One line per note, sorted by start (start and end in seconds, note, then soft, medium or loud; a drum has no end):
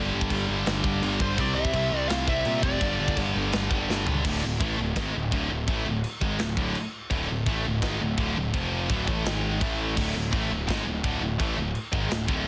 0.00 0.11 G1 loud
0.00 0.30 G2 loud
0.00 0.30 D3 loud
0.00 0.32 G3 loud
0.13 0.29 G1 medium
0.21 kick loud
0.30 0.47 G1 medium
0.30 0.47 G2 medium
0.30 0.48 D3 medium
0.30 0.49 G3 medium
0.30 kick medium
0.30 china medium
0.48 0.65 G1 loud
0.48 0.65 G2 medium
0.48 0.66 D3 medium
0.48 0.67 G3 medium
0.66 0.83 G1 loud
0.66 1.01 G2 medium
0.66 1.02 D3 loud
0.66 1.03 G3 loud
0.66 snare loud
0.66 china medium
0.83 1.00 G1 medium
0.83 1.00 G2 medium
0.83 1.01 D3 medium
0.83 1.04 G3 medium
0.83 kick medium
1.02 1.19 G1 loud
1.02 1.19 G2 medium
1.02 1.19 D3 loud
1.02 1.20 G3 loud
1.02 china medium
1.20 1.36 G1 medium
1.20 1.37 G2 loud
1.20 1.37 D3 medium
1.20 1.38 G3 loud
1.20 1.39 C5 medium
1.20 kick medium
1.38 1.54 C2 loud
1.38 1.72 C3 loud
1.38 1.73 G3 loud
1.38 1.73 C4 loud
1.38 1.54 D5 loud
1.38 kick loud
1.38 china medium
1.55 1.72 C2 medium
1.55 2.08 E5 loud
1.65 kick medium
1.73 1.90 C2 medium
1.73 1.91 C3 medium
1.73 1.92 G3 medium
1.73 1.91 C4 medium
1.73 kick medium
1.73 china medium
1.92 2.08 C2 loud
1.92 2.09 C3 medium
1.92 2.09 G3 loud
1.92 2.10 C4 medium
2.09 2.43 C2 loud
2.09 2.45 C3 loud
2.09 2.45 G3 medium
2.09 2.45 C4 loud
2.09 2.28 F5 loud
2.09 snare loud
2.09 china medium
2.27 2.44 C3 medium
2.27 2.45 G3 medium
2.27 2.44 C4 medium
2.27 2.63 E5 loud
2.27 kick medium
2.45 2.62 A#2 medium
2.45 2.62 C3 medium
2.45 2.63 G3 medium
2.45 2.63 C4 loud
2.45 china medium
2.63 2.79 F1 medium
2.63 2.81 C3 medium
2.63 2.81 G3 loud
2.63 2.81 C4 loud
2.63 3.13 D5 medium
2.63 kick loud
2.81 2.97 G1 loud
2.81 3.16 G2 loud
2.81 3.17 D3 loud
2.81 3.17 G3 loud
2.81 kick loud
2.81 china medium
3.00 3.16 G1 medium
3.08 kick loud
3.17 3.33 G1 medium
3.17 3.34 G2 medium
3.17 3.34 D3 medium
3.17 3.35 G3 medium
3.17 kick medium
3.17 china medium
3.35 3.52 G1 loud
3.35 3.51 G2 medium
3.35 3.52 D3 medium
3.35 3.52 G3 medium
3.52 3.70 G1 medium
3.52 3.88 G2 medium
3.52 3.89 D3 medium
3.52 3.89 G3 loud
3.52 snare loud
3.52 china medium
3.70 3.87 G1 loud
3.70 3.87 G2 medium
3.70 3.88 D3 medium
3.70 3.88 G3 medium
3.70 kick medium
3.89 4.06 G1 medium
3.89 4.06 G2 medium
3.89 4.07 D3 medium
3.89 4.07 G3 loud
3.89 snare medium
4.07 4.24 C#2 medium
4.07 4.24 G2 medium
4.07 4.24 D3 loud
4.07 4.24 G3 loud
4.07 floor tom medium
4.25 4.42 D1 medium
4.25 4.42 D2 loud
4.25 4.42 A2 loud
4.25 4.43 D3 loud
4.25 kick loud
4.25 crash loud
4.25 china medium
4.43 4.60 D1 medium
4.43 4.58 D2 medium
4.43 4.58 A2 medium
4.60 4.77 A1 medium
4.60 4.78 A2 medium
4.60 4.78 E3 medium
4.60 4.79 A3 loud
4.60 kick loud
4.60 china medium
4.79 4.96 D1 medium
4.79 4.93 D2 medium
4.79 4.93 A2 medium
4.96 5.13 G#1 loud
4.96 5.14 G#2 medium
4.96 5.14 D#3 loud
4.96 5.14 G#3 loud
4.96 kick medium
4.96 snare loud
4.96 china medium
5.15 5.32 D1 medium
5.15 5.29 D2 medium
5.15 5.29 A2 medium
5.32 5.49 D1 loud
5.32 5.50 D2 medium
5.32 5.50 A2 loud
5.32 5.51 D3 loud
5.32 kick loud
5.32 china medium
5.50 5.67 D1 medium
5.50 5.65 D2 medium
5.50 5.65 A2 medium
5.68 5.85 A1 medium
5.68 5.85 A2 medium
5.68 5.86 E3 loud
5.68 5.86 A3 loud
5.68 kick loud
5.68 china medium
5.86 6.03 D1 medium
5.86 6.00 D2 medium
5.86 6.01 A2 medium
6.04 china medium
6.21 6.38 G#1 medium
6.21 6.39 G#2 medium
6.21 6.39 D#3 loud
6.21 6.39 G#3 loud
6.21 kick loud
6.39 6.56 D1 medium
6.39 6.54 D2 medium
6.39 6.54 A2 medium
6.39 snare loud
6.39 china medium
6.57 6.74 D1 loud
6.57 6.75 D2 medium
6.57 6.75 A2 loud
6.57 6.76 D3 loud
6.57 kick loud
6.75 china medium
7.11 7.28 D1 loud
7.11 7.28 D2 loud
7.11 7.28 A2 loud
7.11 7.29 D3 loud
7.11 kick loud
7.11 china medium
7.29 7.46 D1 medium
7.29 7.44 D2 medium
7.29 7.44 A2 medium
7.46 7.63 A1 medium
7.46 7.64 A2 medium
7.46 7.65 E3 medium
7.46 7.65 A3 loud
7.46 kick loud
7.46 china medium
7.66 7.82 D1 medium
7.66 7.80 D2 medium
7.66 7.80 A2 medium
7.82 7.99 G#1 loud
7.82 8.01 G#2 loud
7.82 8.01 D#3 medium
7.82 8.01 G#3 loud
7.82 kick medium
7.82 snare medium
7.82 china medium
8.01 8.17 D1 medium
8.01 8.16 D2 medium
8.01 8.16 A2 medium
8.18 8.35 D1 loud
8.18 8.36 D2 medium
8.18 8.36 A2 loud
8.18 8.36 D3 loud
8.18 kick loud
8.18 china medium
8.36 8.53 D1 medium
8.36 8.51 D2 medium
8.36 8.52 A2 medium
8.54 8.87 F1 medium
8.54 8.90 F2 loud
8.54 8.90 C3 loud
8.54 8.90 F3 loud
8.54 kick loud
8.54 china medium
8.90 9.06 D1 medium
8.90 9.08 D2 medium
8.90 9.07 A2 loud
8.90 9.08 D3 medium
8.90 kick loud
8.90 china medium
9.08 9.24 A1 loud
9.08 9.25 A2 medium
9.08 9.26 E3 medium
9.08 9.26 A3 loud
9.08 kick loud
9.25 9.59 G#1 loud
9.25 9.61 G#2 medium
9.25 9.61 D#3 loud
9.25 9.61 G#3 loud
9.25 snare loud
9.25 china medium
9.61 9.95 A1 medium
9.61 9.96 A2 loud
9.61 9.97 E3 medium
9.61 9.97 A3 loud
9.61 kick loud
9.61 china medium
9.97 10.14 D1 loud
9.97 10.14 D2 loud
9.97 10.14 A2 loud
9.97 10.15 D3 loud
9.97 kick loud
9.97 crash loud
9.97 china medium
10.14 10.31 D1 medium
10.14 10.30 D2 medium
10.14 10.30 A2 medium
10.32 10.49 A1 medium
10.32 10.50 A2 medium
10.32 10.50 E3 loud
10.32 10.50 A3 medium
10.32 kick loud
10.32 china medium
10.50 10.67 D1 medium
10.50 10.65 D2 medium
10.50 10.65 A2 medium
10.68 10.85 G#1 loud
10.68 10.86 G#2 medium
10.68 10.86 D#3 loud
10.68 10.86 G#3 loud
10.68 kick medium
10.68 snare loud
10.68 china medium
10.87 11.03 D1 medium
10.87 11.01 D2 medium
10.87 11.01 A2 medium
11.04 11.20 D1 loud
11.04 11.21 D2 loud
11.04 11.22 A2 loud
11.04 11.22 D3 loud
11.04 kick loud
11.04 china medium
11.21 11.38 D1 medium
11.21 11.36 D2 medium
11.21 11.37 A2 medium
11.40 11.56 A1 loud
11.40 11.57 A2 loud
11.40 11.57 E3 loud
11.40 11.57 A3 loud
11.40 kick loud
11.40 china medium
11.57 11.74 D1 medium
11.57 11.72 D2 medium
11.57 11.72 A2 medium
11.75 china medium
11.93 12.09 G#1 loud
11.93 12.10 G#2 loud
11.93 12.11 D#3 medium
11.93 12.11 G#3 loud
11.93 kick loud
12.10 12.27 D1 medium
12.10 12.25 D2 medium
12.10 12.26 A2 medium
12.10 snare loud
12.10 china medium
12.28 12.45 D1 loud
12.28 12.46 D2 medium
12.28 12.46 A2 loud
12.28 12.46 D3 loud
12.28 kick medium